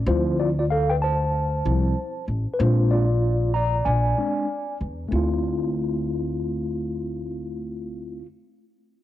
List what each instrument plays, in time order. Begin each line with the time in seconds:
0.07 upright bass D2, tine electric piano F3 C4 E4 F4 C5
0.40 tine electric piano F4 D5
0.59 tine electric piano F4 D5
0.71 tine electric piano A4 F5
0.90 tine electric piano B4 G5
1.02 tine electric piano C5 A5
1.65 upright bass C2, tine electric piano F3 C4 E4
2.28 upright bass A1
2.54 tine electric piano B4
2.59 upright bass A#1, tine electric piano G#3 C4 D4 F4 C5
2.91 tine electric piano F4 D5
3.54 tine electric piano D5 A#5
3.85 upright bass A#1, tine electric piano D5 G#5
4.17 tine electric piano G#3 C4 D4
4.81 upright bass E2
5.08 upright bass D2, tine electric piano A3 C4
5.13 tine electric piano E4 F4